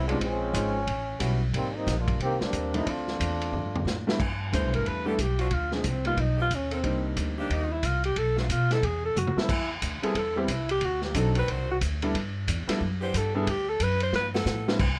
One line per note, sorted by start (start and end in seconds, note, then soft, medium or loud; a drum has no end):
0.00 0.20 C2 medium
0.08 0.20 G3 medium
0.08 0.19 G#3 medium
0.08 0.20 B3 medium
0.08 0.20 C4 medium
0.08 0.20 C#4 medium
0.08 0.20 D4 medium
0.08 0.20 D#4 medium
0.08 0.20 F4 medium
0.08 ride soft
0.20 0.53 A#1 medium
0.20 0.84 F3 medium
0.20 0.84 G#3 loud
0.20 0.84 C4 medium
0.20 1.38 C#4 loud
0.20 kick soft
0.20 ride medium
0.53 0.86 G#1 loud
0.53 0.73 G#3 medium
0.53 0.73 C4 medium
0.53 0.73 C#4 medium
0.53 0.73 D#4 medium
0.53 0.73 F4 medium
0.53 kick soft
0.53 hi-hat pedal medium
0.53 ride medium
0.87 1.20 A1 medium
0.87 kick soft
0.87 ride medium
1.19 1.53 B1 medium
1.19 1.39 G3 soft
1.19 1.39 B3 soft
1.19 1.39 C#4 soft
1.19 1.39 E4 soft
1.19 1.39 F#4 medium
1.19 kick soft
1.19 hi-hat pedal medium
1.19 ride medium
1.53 1.86 G#1 medium
1.53 1.75 D#3 medium
1.53 1.74 G3 medium
1.53 1.74 A#3 medium
1.53 1.74 C4 loud
1.53 kick soft
1.53 ride medium
1.76 1.98 G3 medium
1.76 1.98 A#3 medium
1.76 1.98 C4 medium
1.76 1.98 D#4 medium
1.86 2.19 A#1 loud
1.86 kick soft
1.86 snare soft
1.86 hi-hat pedal medium
1.86 ride medium
1.99 2.19 G3 medium
1.99 2.19 A#3 medium
1.99 2.19 D4 medium
1.99 2.19 F4 medium
2.08 kick medium
2.08 ride soft
2.20 2.39 C2 medium
2.20 2.40 D#3 medium
2.20 2.40 A#3 loud
2.20 2.40 C4 loud
2.20 2.41 G4 loud
2.20 kick soft
2.20 ride medium
2.41 2.74 G3 medium
2.41 2.74 A#3 medium
2.41 2.74 C4 medium
2.41 2.74 D4 loud
2.41 muted upright bass stroke soft
2.41 snare medium
2.53 2.85 D#2 medium
2.53 kick soft
2.53 hi-hat pedal medium
2.53 ride medium
2.74 2.85 F3 medium
2.74 2.88 G3 medium
2.74 2.85 A3 medium
2.74 2.88 A#3 medium
2.74 2.85 C4 medium
2.74 2.86 C4 medium
2.74 2.86 D4 medium
2.74 2.88 D#4 medium
2.74 2.86 E4 medium
2.74 ride medium
2.86 3.19 D2 medium
2.86 4.07 A3 medium
2.86 3.53 C4 medium
2.86 4.07 D4 medium
2.86 4.07 F4 medium
2.86 kick soft
2.86 ride medium
3.08 snare soft
3.20 3.52 E2 medium
3.20 kick soft
3.20 hi-hat pedal medium
3.20 ride medium
3.42 ride soft
3.52 3.84 G2 medium
3.52 floor tom soft
3.76 floor tom medium
3.85 4.18 A2 medium
3.85 snare medium
3.85 hi-hat pedal medium
4.07 4.18 G3 medium
4.07 4.18 A3 medium
4.07 4.18 B3 medium
4.07 4.18 D4 medium
4.07 4.18 E4 medium
4.07 snare loud
4.19 4.51 G2 medium
4.19 kick medium
4.19 crash medium
4.52 4.63 D2 medium
4.52 5.02 G3 medium
4.52 5.02 A3 soft
4.52 5.02 B3 medium
4.52 5.02 D4 soft
4.52 5.03 E4 medium
4.52 4.72 C5 medium
4.52 kick soft
4.52 hi-hat pedal medium
4.52 ride medium
4.63 4.74 B1 medium
4.74 4.84 G1 medium
4.74 4.89 A#4 medium
4.74 ride soft
4.86 5.18 E2 medium
4.86 5.06 B4 medium
4.86 kick soft
4.86 ride soft
5.05 5.15 E3 medium
5.05 5.17 G3 medium
5.05 5.17 A3 medium
5.05 5.17 B3 medium
5.05 5.14 B3 medium
5.05 5.15 D4 medium
5.05 5.17 D4 medium
5.05 5.17 E4 medium
5.05 5.14 G4 loud
5.05 5.22 A4 medium
5.18 5.50 B1 medium
5.18 5.41 G4 medium
5.18 kick soft
5.18 hi-hat pedal medium
5.18 ride medium
5.39 5.48 F3 medium
5.39 5.48 C4 medium
5.39 5.48 D4 medium
5.39 5.47 F4 loud
5.39 5.55 F#4 medium
5.39 ride soft
5.51 5.83 D2 medium
5.51 5.73 F4 medium
5.51 kick soft
5.51 ride medium
5.72 5.84 F3 soft
5.72 5.84 G#3 soft
5.72 5.89 G#3 medium
5.72 5.84 C4 soft
5.72 5.84 D4 soft
5.72 5.84 F4 medium
5.72 snare soft
5.84 6.16 C2 loud
5.84 6.06 C4 medium
5.84 kick soft
5.84 hi-hat pedal medium
5.84 ride medium
6.05 6.17 G3 medium
6.05 6.16 A#3 medium
6.05 6.17 B3 medium
6.05 6.17 D#4 soft
6.05 6.17 F4 medium
6.05 6.21 F4 medium
6.05 ride soft
6.17 6.49 B1 medium
6.17 6.40 D#4 medium
6.17 kick soft
6.17 ride medium
6.38 6.47 F3 medium
6.38 6.47 B3 medium
6.38 6.47 D#4 medium
6.38 6.56 F4 loud
6.38 6.46 G4 medium
6.50 6.83 D#2 medium
6.50 kick soft
6.50 hi-hat pedal soft
6.50 ride medium
6.55 6.74 C#4 medium
6.70 6.79 D#3 medium
6.70 6.79 A#3 medium
6.70 6.79 C4 medium
6.70 6.79 A4 medium
6.70 ride soft
6.74 7.04 C4 medium
6.83 7.16 C2 medium
6.83 7.75 G3 medium
6.83 7.76 A#3 soft
6.83 7.76 C4 medium
6.83 7.76 D4 soft
6.83 7.76 D#4 medium
6.83 kick soft
6.83 ride medium
7.17 7.49 D2 loud
7.17 kick soft
7.17 hi-hat pedal medium
7.17 ride medium
7.37 7.81 D#3 medium
7.37 7.81 A#3 medium
7.37 7.81 C4 medium
7.37 7.55 D4 medium
7.37 7.81 G4 loud
7.50 7.82 D#2 medium
7.50 7.73 D#4 medium
7.50 kick soft
7.50 ride medium
7.72 7.87 E4 medium
7.83 8.15 C2 medium
7.83 8.05 F4 medium
7.83 kick soft
7.83 hi-hat pedal medium
7.83 ride medium
8.04 8.20 G4 medium
8.04 ride medium
8.16 8.49 B1 medium
8.16 8.38 A4 loud
8.16 kick soft
8.16 ride medium
8.37 8.45 D3 medium
8.37 8.46 A3 medium
8.37 8.46 B3 medium
8.37 8.53 D4 medium
8.37 8.45 F4 loud
8.37 snare soft
8.49 8.82 B2 medium
8.49 8.74 F4 medium
8.49 kick soft
8.49 hi-hat pedal medium
8.49 ride medium
8.70 8.79 D3 medium
8.70 8.79 G#3 medium
8.70 8.79 C4 medium
8.70 8.79 E4 loud
8.70 8.86 A4 loud
8.70 snare soft
8.70 ride soft
8.82 9.15 E2 medium
8.82 9.04 G#4 medium
8.82 kick soft
8.82 ride medium
9.05 9.20 A4 loud
9.15 9.35 F#2 medium
9.15 9.40 F#4 medium
9.15 hi-hat pedal medium
9.15 mid tom soft
9.27 mid tom medium
9.36 9.48 G3 medium
9.36 9.48 B3 medium
9.36 9.48 C4 medium
9.36 9.48 E4 medium
9.36 9.71 E4 medium
9.36 9.48 A4 medium
9.36 muted upright bass stroke soft
9.36 snare medium
9.49 9.81 E2 medium
9.49 kick medium
9.49 crash medium
9.82 10.01 D2 loud
9.82 kick soft
9.82 hi-hat pedal medium
9.82 ride medium
10.02 10.14 G3 medium
10.02 10.14 B3 medium
10.02 10.14 C4 medium
10.02 10.14 E4 medium
10.02 10.19 G#4 medium
10.02 10.14 A4 medium
10.02 muted upright bass stroke soft
10.02 ride medium
10.15 10.47 E2 medium
10.15 10.40 A4 loud
10.15 kick soft
10.15 ride medium
10.36 10.47 G3 medium
10.36 10.47 B3 medium
10.36 10.48 C4 medium
10.36 10.53 C4 medium
10.36 10.48 E4 medium
10.36 10.48 G4 medium
10.48 10.80 C2 medium
10.48 10.71 E4 medium
10.48 kick soft
10.48 hi-hat pedal medium
10.48 ride medium
10.69 10.86 G4 loud
10.69 ride medium
10.81 11.14 D2 medium
10.81 kick soft
10.81 ride medium
10.85 11.04 F#4 loud
11.02 11.20 G4 medium
11.02 snare soft
11.14 11.47 B1 medium
11.14 11.34 F#3 medium
11.14 11.34 C4 medium
11.14 11.34 D4 medium
11.14 11.34 D#4 medium
11.14 11.34 A4 medium
11.14 kick soft
11.14 hi-hat pedal medium
11.14 ride medium
11.18 11.37 A4 medium
11.35 11.79 D#3 loud
11.35 11.79 C4 medium
11.35 11.79 D4 medium
11.35 11.79 F#4 loud
11.35 11.52 B4 loud
11.35 ride soft
11.48 11.80 C2 medium
11.48 11.70 C5 loud
11.48 kick soft
11.48 ride medium
11.71 11.78 F#4 medium
11.81 12.13 D2 medium
11.81 kick soft
11.81 hi-hat pedal medium
11.81 ride medium
12.02 12.13 G3 medium
12.02 12.13 B3 medium
12.02 12.13 D4 medium
12.02 12.14 E4 medium
12.02 12.14 A4 medium
12.02 ride medium
12.14 12.46 G2 medium
12.14 kick soft
12.14 ride medium
12.47 12.67 E2 loud
12.47 kick soft
12.47 hi-hat pedal medium
12.47 ride medium
12.68 12.79 G3 medium
12.68 12.79 B3 medium
12.68 12.79 D4 medium
12.68 12.79 E4 medium
12.68 12.80 A4 medium
12.68 muted upright bass stroke soft
12.68 snare soft
12.68 ride medium
12.81 13.13 F#2 medium
12.81 kick soft
13.01 13.44 E3 medium
13.01 13.44 B3 medium
13.01 13.44 D4 medium
13.01 13.44 G4 loud
13.01 13.18 C5 medium
13.14 13.46 G2 loud
13.14 13.36 A4 medium
13.14 kick soft
13.14 hi-hat pedal medium
13.14 ride medium
13.35 13.46 G3 medium
13.35 13.46 B3 medium
13.35 13.46 D4 medium
13.35 13.46 E4 medium
13.35 13.51 G#4 medium
13.35 13.46 A4 medium
13.47 13.79 D2 medium
13.47 13.71 G4 loud
13.47 kick soft
13.47 ride medium
13.69 13.84 A4 medium
13.80 14.12 F#2 loud
13.80 14.02 B4 loud
13.80 kick soft
13.80 hi-hat pedal medium
13.80 ride medium
14.00 14.14 C5 loud
14.00 ride medium
14.13 14.45 G2 medium
14.13 14.27 B4 loud
14.13 snare soft
14.33 14.77 F3 medium
14.33 14.77 B3 loud
14.33 14.77 E4 medium
14.33 14.77 A4 loud
14.33 snare medium
14.45 14.78 A2 loud
14.45 snare medium
14.45 hi-hat pedal medium
14.68 14.79 G3 medium
14.68 14.79 C4 medium
14.68 14.79 D4 medium
14.68 14.79 E4 medium
14.68 14.79 B4 medium
14.68 snare loud
14.79 14.99 C2 medium
14.79 kick medium
14.79 crash medium